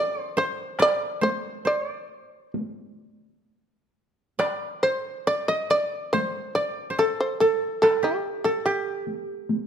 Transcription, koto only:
Already playing: D5
0.20 C5
0.37 C5
0.79 D5
1.21 C5
1.65 C5
1.90 D5
4.39 D5
4.83 C5
5.27 D5
5.49 D#5
5.70 D5
6.13 C5
6.55 D5
6.90 C5
6.99 A4
7.41 A4
7.83 A4
8.03 G4
8.45 A4
8.66 G4

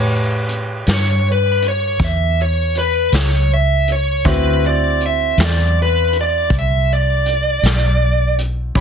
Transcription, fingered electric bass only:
Already playing: A2
0.88 G2
2.00 E2
3.12 C#2
4.25 D2
5.38 E2
6.50 C2
7.63 B1
8.75 A1

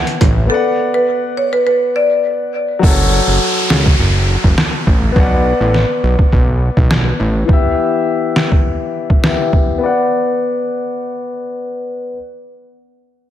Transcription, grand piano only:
Already playing: E3 B3 G4 E5
0.46 B3 B4
0.52 D5 F#5
2.79 F#3 F#4
2.84 A4 C#5
5.12 B3 B4
5.17 D5 F#5
7.45 E3 B3
7.50 G4 E5
9.22 E3 B3 G4 E5
9.78 B3 B4
9.83 D5 F#5

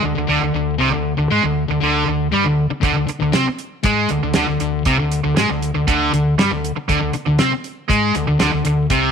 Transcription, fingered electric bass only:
0.04 D2
0.17 D2
0.29 D2
0.42 D2
0.54 D2
0.80 C2
0.93 D2
1.18 D2
1.31 G#2
1.44 D2
1.69 D2
1.82 D2
2.08 D2
2.32 G2
2.46 D2
2.83 D2
2.96 D2
3.09 muted fingered electric bass stroke
3.22 D2
3.35 C3
3.47 muted fingered electric bass stroke
3.84 G#2
4.11 D2
4.23 D2
4.36 D2
4.49 D2
4.61 D2
4.86 C2
4.99 D2
5.25 D2
5.38 G#2
5.50 D2
5.76 D2
5.88 D2
6.13 D2
6.38 G2
6.51 D2
6.76 muted fingered electric bass stroke
6.89 D2
7.02 D2
7.28 D2
7.41 C3
7.53 muted fingered electric bass stroke
7.90 G#2
8.16 D2
8.28 D2
8.41 D2
8.54 D2
8.66 D2
8.90 C2

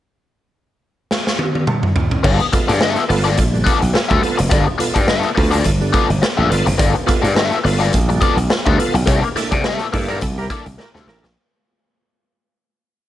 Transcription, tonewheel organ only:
2.24 G2 D3
2.53 B3 F4 A4
2.69 F4 A4
2.81 G2 D3
3.09 B3 F4 A4
3.25 F4 A4
3.37 F4 A4
3.53 G2 D3
3.66 B3 F4 A4
3.94 F4 A4
4.10 G2 D3
4.23 B3 F4 A4
4.51 G2 D3
4.79 B3 F4 A4
4.95 F4 A4
5.08 G2 D3
5.37 B3 F4 A4
5.53 F4 A4
5.65 F4 A4
5.81 G2 D3
5.93 B3 F4 A4
6.22 F4 A4
6.37 G2 D3
6.50 B3 F4 A4
6.78 G2 D3
7.06 B3 F4 A4
7.23 F4 A4
7.35 G2 D3
7.64 B3 F4 A4
7.81 F4 A4
7.93 F4 A4
8.09 G2 D3
8.21 B3 F4 A4
8.50 F4 A4
8.66 G2 D3
8.78 B3 F4 A4
9.07 C3 G3
9.36 A#3 D4 E4 A4
9.52 E4 A4
9.65 C3 G3
9.93 A#3 D4 E4 A4
10.09 E4 A4
10.21 E4 A4
10.38 C3 G3
10.50 A#3 D4 E4 A4
10.79 E4 A4
10.94 C3 G3
11.07 A#3 D4 E4 A4

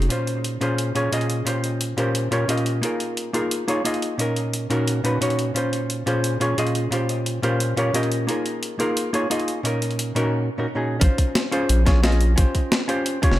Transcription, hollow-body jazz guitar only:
0.09 A#2 C#4 F4 C5
0.61 A#2 C#4 F4 G#4 C5
0.95 A#2 C#4 F4 G#4 C#5
1.12 A#2 C#4 F4 G#4 D#5
1.45 A#2 C#4 F4 G4 C5
1.97 A#2 C#4 F4 G4 A#4 C5
2.31 A#2 C#4 F4 G4 A#4 C#5
2.48 A#2 C#4 F4 G4 A#4 D#5
2.81 A#3 D#4 F4 G#4 A#4
3.33 A#3 D#4 F4 G#4 A#4
3.68 A#3 D#4 F4 G#4 C#5
3.84 A#3 D#4 F4 G#4 D#5
4.18 A#2 C#4 D#4 A#4
4.70 A#2 C#4 D#4 F#4 A#4
5.04 A#2 C#4 D#4 F#4 B4
5.21 A#2 C#4 D#4 F#4 C#5
5.54 A#2 C#4 F4 C5
6.06 A#2 C#4 F4 G#4 C5
6.40 A#2 C#4 F4 G#4 C#5
6.57 A#2 C#4 F4 G#4 D#5
6.91 A#2 C#4 F4 G4 C5
7.42 A#2 C#4 F4 G4 A#4 C5
7.76 A#2 C#4 F4 G4 A#4 C#5
7.93 A#2 C#4 F4 G4 A#4 D#5
8.27 A#3 D#4 F4 G#4 A#4
8.79 A#3 D#4 F4 G#4 A#4
9.13 A#3 D#4 F4 G#4 C#5
9.30 A#3 D#4 F4 G#4 D#5
9.63 A#2 C#4 D#4 A#4
10.15 A#2 C#4 D#4 F#4 A#4
10.58 A#2 C#4 D#4 F#4 A#4
10.75 A#2 C#4 D#4 F#4 G#4
11.00 C#4 F4 C5
11.51 C#4 F4 G#4 C5
11.86 C#4 F4 G#4 C#5
12.03 C#4 F4 G#4 D#5
12.36 C#4 F4 G4 C5
12.88 C#4 F4 G4 C5
13.22 C#4 F4 G4 C#5

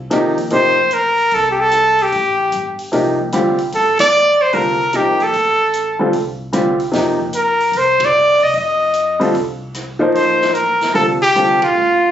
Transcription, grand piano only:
0.10 C3 F3 A#3 D#4 G4
0.51 C3 F3 A#3 D#4 G4
2.92 C3 F3 A#3 D#4 G4
3.33 D3 G3 C4 F4 G4
4.52 D3 G3 C4 F4 A4
4.93 C3 F3 A#3 D#4 G4
5.99 D3 G3 C4 F4 A4
6.52 D3 G3 C4 F4 G4
6.91 C3 F3 A#3 D#4 G4
9.19 D3 G3 C4 F4 A4
9.99 F3 A#3 D#4 A4 C5
10.94 D3 G3 C4 F4 A4
11.35 D3 G3 C4 F4 A4

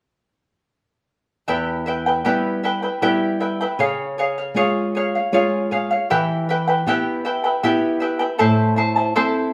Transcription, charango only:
1.48 E4 G4 B4 E5 G5
1.86 E4 B4 E5 G5
2.06 E4 B4 G5
2.25 E4 G4 B4 E5 G5
2.63 E4 B4 E5 G5
2.83 E4 B4 G5
3.02 E4 G4 B4 E5 G5
3.40 E4 B4 E5 G5
3.61 E4 B4 G5
3.79 G#4 C#5 F5
4.18 G#4 C#5 F5
4.38 C#5 F5
4.56 G#4 C#5 F5
4.95 G#4 C#5 F5
5.15 C#5 F5
5.33 G#4 C#5 F5
5.71 G#4 C#5 F5
5.91 C#5 F5
6.10 E4 G4 B4 E5 G5
6.49 E4 B4 E5 G5
6.68 E4 B4 G5
6.87 E4 G4 B4 E5 G5
7.25 E4 B4 E5 G5
7.44 E4 B4 G5
7.63 E4 G4 B4 E5 G5
8.00 E4 B4 E5 G5
8.19 E4 B4 G5
8.38 E4 A4 C5 E5 A5
8.76 E4 C5 E5 A5
8.96 E4 C5 A5
9.16 E4 A4 C5 E5 A5

